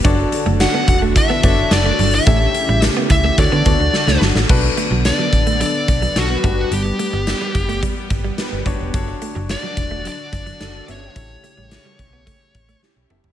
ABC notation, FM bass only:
X:1
M:4/4
L:1/16
Q:1/4=108
K:D
V:1 name="FM bass" clef=bass
F,,,2 z F,,,2 z E,,,3 z F,,,2 F,,,2 G,,,2 | A,,,2 z A,,,2 z C,,2 D,, D, D,, D,, z C,, G,,, A,,, | B,,,2 z B,,,2 z A,,,3 z B,,,2 B,,,2 G,,,2 | G,,,2 z G,,,2 z F,,,3 z G,,,2 z G,,, F,,, E,,, |
F,,,2 z F,,,2 z E,,,3 z F,,,2 F,,,2 G,,,2 | A,,,2 z A,,,2 z B,,,3 z A,,,2 z B,,, F,,, G,,, |]